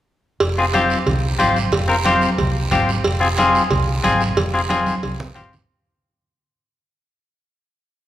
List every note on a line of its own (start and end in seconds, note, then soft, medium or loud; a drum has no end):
0.40 0.94 F1 medium
0.40 cowbell loud
0.40 high conga soft
0.40 long guiro medium
0.58 0.64 C4 medium
0.58 0.64 F4 medium
0.58 0.64 G#4 medium
0.74 0.97 C4 medium
0.74 0.97 F4 medium
0.74 0.98 G4 medium
0.74 cowbell medium
0.74 high conga medium
0.74 short guiro medium
0.90 short guiro medium
1.06 1.33 C2 loud
1.06 cowbell medium
1.06 high conga soft
1.06 low conga medium
1.06 long guiro medium
1.39 1.66 G#1 loud
1.39 1.57 C4 medium
1.39 1.57 F4 medium
1.39 1.57 G4 medium
1.39 cowbell medium
1.39 high conga medium
1.39 short guiro medium
1.56 short guiro medium
1.72 2.25 F1 medium
1.72 cowbell loud
1.72 high conga soft
1.72 low conga medium
1.72 long guiro medium
1.88 1.95 C4 medium
1.88 1.95 F4 medium
1.88 1.95 A#4 medium
2.05 2.29 C4 medium
2.05 2.29 F4 medium
2.05 2.29 G4 loud
2.05 cowbell medium
2.05 high conga medium
2.05 short guiro medium
2.21 short guiro medium
2.38 2.65 C2 loud
2.38 cowbell medium
2.38 high conga soft
2.38 low conga medium
2.38 long guiro medium
2.71 2.98 G#1 loud
2.71 2.89 C4 medium
2.71 2.89 F4 medium
2.71 2.90 G4 medium
2.71 cowbell medium
2.71 high conga medium
2.71 low conga medium
2.71 short guiro medium
2.89 short guiro medium
3.04 3.58 F1 medium
3.04 cowbell medium
3.04 high conga soft
3.04 long guiro medium
3.20 3.27 C4 medium
3.20 3.27 F4 medium
3.20 3.27 G#4 medium
3.38 3.61 C4 medium
3.38 3.62 F4 medium
3.38 3.62 G#4 loud
3.38 cowbell medium
3.38 high conga medium
3.38 short guiro medium
3.55 short guiro medium
3.70 3.97 C2 loud
3.70 cowbell medium
3.70 high conga soft
3.70 low conga medium
3.70 long guiro medium
4.03 4.31 G#1 loud
4.03 4.22 C4 medium
4.03 4.21 F4 medium
4.03 4.22 G#4 medium
4.03 cowbell medium
4.03 high conga medium
4.03 short guiro medium
4.21 short guiro medium
4.37 4.90 F1 medium
4.37 cowbell loud
4.37 high conga soft
4.37 low conga medium
4.37 long guiro medium
4.54 4.60 C4 medium
4.54 4.60 F4 medium
4.54 4.60 G#4 medium
4.69 4.93 C4 medium
4.69 4.93 F4 medium
4.69 4.94 G#4 medium
4.69 cowbell medium
4.69 high conga loud
4.69 short guiro medium
4.86 high conga medium
4.86 short guiro medium
5.03 5.30 C2 medium
5.03 cowbell medium
5.03 high conga medium
5.03 long guiro medium
5.20 low conga loud
5.35 5.63 G#1 loud
5.35 5.53 C4 medium
5.35 5.54 F4 medium
5.35 5.54 G4 medium
5.35 cowbell medium
5.35 low conga medium
5.35 short guiro medium
5.53 low conga medium
5.53 short guiro medium